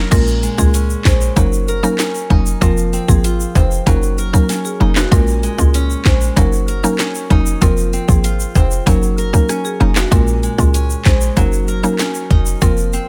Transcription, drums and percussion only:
0.12 kick loud
0.12 closed hi-hat medium
0.12 crash loud
0.12 shaker medium
0.27 shaker medium
0.43 shaker medium
0.58 kick loud
0.58 shaker medium
0.74 closed hi-hat medium
0.74 shaker medium
0.90 shaker medium
1.05 kick medium
1.05 snare loud
1.05 clap medium
1.05 shaker medium
1.21 shaker medium
1.37 kick medium
1.37 closed hi-hat medium
1.37 shaker medium
1.53 shaker medium
1.68 shaker soft
1.84 shaker medium
1.98 snare loud
1.98 clap medium
1.98 closed hi-hat medium
1.98 shaker medium
2.15 shaker medium
2.30 kick medium
2.46 shaker medium
2.62 kick loud
2.62 closed hi-hat medium
2.62 shaker medium
2.77 shaker medium
2.93 shaker medium
3.08 kick loud
3.08 shaker medium
3.24 closed hi-hat medium
3.24 shaker medium
3.40 shaker medium
3.55 kick medium
3.55 high timbale medium
3.55 shaker medium
3.71 shaker medium
3.87 kick medium
3.87 closed hi-hat medium
3.87 shaker medium
4.03 shaker medium
4.18 shaker soft
4.34 kick loud
4.34 shaker medium
4.49 snare medium
4.49 closed hi-hat medium
4.49 shaker medium
4.65 shaker medium
4.96 snare loud
4.96 clap loud
4.96 high timbale medium
4.96 shaker medium
5.12 kick loud
5.12 closed hi-hat medium
5.12 shaker medium
5.27 shaker medium
5.43 shaker medium
5.59 kick loud
5.59 shaker medium
5.74 closed hi-hat medium
5.74 shaker medium
5.90 shaker medium
6.05 kick medium
6.05 snare loud
6.05 clap medium
6.05 shaker soft
6.21 shaker medium
6.37 kick medium
6.37 closed hi-hat medium
6.37 shaker medium
6.53 shaker medium
6.68 shaker soft
6.84 shaker medium
6.99 snare loud
6.99 clap medium
6.99 closed hi-hat medium
6.99 shaker medium
7.15 shaker medium
7.30 kick loud
7.46 shaker medium
7.62 kick loud
7.62 closed hi-hat medium
7.62 shaker medium
7.77 shaker medium
7.93 shaker medium
8.09 kick loud
8.09 shaker medium
8.24 closed hi-hat medium
8.24 shaker medium
8.40 shaker medium
8.55 kick medium
8.55 high timbale medium
8.55 shaker medium
8.71 shaker medium
8.87 kick medium
8.87 closed hi-hat medium
8.87 shaker medium
9.03 shaker medium
9.18 shaker soft
9.34 kick medium
9.34 shaker medium
9.49 cross-stick medium
9.49 closed hi-hat medium
9.49 shaker medium
9.65 shaker medium
9.96 snare loud
9.96 clap loud
9.96 high timbale medium
9.96 shaker medium
10.12 kick loud
10.12 closed hi-hat medium
10.12 shaker medium
10.27 shaker medium
10.43 shaker medium
10.59 kick loud
10.59 shaker medium
10.74 closed hi-hat medium
10.74 shaker medium
10.90 shaker medium
11.05 kick medium
11.05 snare loud
11.05 clap medium
11.05 shaker soft
11.21 shaker medium
11.37 kick medium
11.37 closed hi-hat medium
11.37 shaker medium
11.53 shaker medium
11.68 shaker soft
11.84 shaker medium
11.99 snare loud
11.99 clap medium
11.99 closed hi-hat medium
11.99 shaker medium
12.15 shaker medium
12.31 kick loud
12.46 shaker medium
12.62 kick loud
12.62 closed hi-hat medium
12.62 shaker medium
12.77 shaker medium
12.93 shaker medium

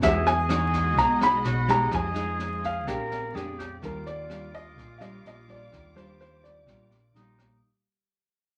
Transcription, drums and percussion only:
0.02 kick medium
0.02 snare soft
0.26 snare soft
0.49 cross-stick medium
0.49 snare soft
0.73 kick soft
0.73 snare soft
0.98 kick medium
0.98 snare soft
1.21 cross-stick medium
1.21 snare soft
1.44 snare soft
1.68 kick soft
1.68 snare soft
1.91 kick medium
1.91 cross-stick medium
1.91 snare soft
2.15 snare soft
2.39 snare soft
2.64 kick soft
2.64 snare soft
2.87 kick medium
2.87 cross-stick medium
2.87 snare soft
3.11 snare soft
3.36 snare soft
3.59 kick soft
3.59 cross-stick medium
3.59 snare soft
3.83 kick medium
3.83 snare soft
4.06 snare soft
4.30 cross-stick medium
4.30 snare soft
4.54 kick soft
4.54 snare soft
4.78 kick medium
4.78 snare soft
5.01 cross-stick medium
5.01 snare soft
5.25 snare soft
5.49 kick soft
5.49 snare soft
5.73 kick medium
5.73 cross-stick medium
5.73 snare soft
5.97 snare soft
6.20 snare soft
6.44 kick soft
6.44 snare soft
6.67 kick medium
6.67 cross-stick medium
6.67 snare soft
6.91 snare soft
7.15 snare soft
7.39 kick soft
7.39 cross-stick medium
7.39 snare soft

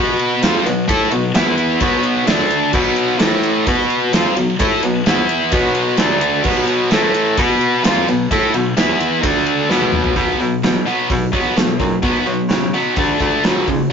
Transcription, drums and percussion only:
0.19 ride medium
0.43 snare loud
0.43 ride loud
0.66 snare soft
0.66 ride medium
0.89 kick loud
0.89 ride loud
1.11 ride medium
1.35 snare loud
1.35 ride medium
1.58 ride medium
1.80 kick medium
1.80 ride medium
2.03 ride medium
2.27 snare loud
2.27 ride medium
2.50 ride medium
2.73 kick loud
2.73 crash medium
2.96 ride medium
3.19 snare loud
3.19 ride medium
3.43 ride medium
3.67 kick loud
3.67 ride medium
3.90 ride medium
4.13 snare loud
4.13 ride loud
4.37 ride medium
4.59 kick loud
4.59 ride loud
4.83 ride medium
5.06 snare loud
5.06 ride medium
5.29 ride medium
5.52 kick loud
5.52 ride medium
5.75 ride medium
5.97 snare loud
5.97 ride medium
6.21 ride medium
6.44 kick medium
6.44 crash medium
6.67 ride medium
6.91 snare loud
6.91 ride medium
7.14 ride medium
7.37 kick loud
7.37 ride medium
7.61 ride medium
7.84 snare loud
7.84 ride loud
8.08 snare soft
8.08 ride medium
8.31 kick medium
8.31 ride medium
8.54 ride medium
8.77 snare loud
8.77 ride medium
9.00 ride medium
9.23 kick medium
9.23 ride loud
9.46 ride medium
9.71 snare medium
9.82 high tom medium
9.92 mid tom medium
10.04 floor tom medium
10.16 kick medium
10.16 open hi-hat medium
10.40 open hi-hat soft
10.63 snare loud
10.63 open hi-hat medium
10.87 open hi-hat soft
11.10 kick loud
11.10 open hi-hat medium
11.33 kick medium
11.33 open hi-hat medium
11.57 snare loud
11.57 open hi-hat medium
11.80 kick medium
11.80 open hi-hat medium
12.03 kick loud
12.03 open hi-hat medium
12.26 open hi-hat soft
12.50 snare medium
12.50 open hi-hat medium
12.74 open hi-hat medium
12.96 kick loud
12.96 open hi-hat medium
13.20 kick medium
13.20 open hi-hat medium
13.44 snare loud
13.44 open hi-hat medium
13.68 kick medium
13.68 open hi-hat medium

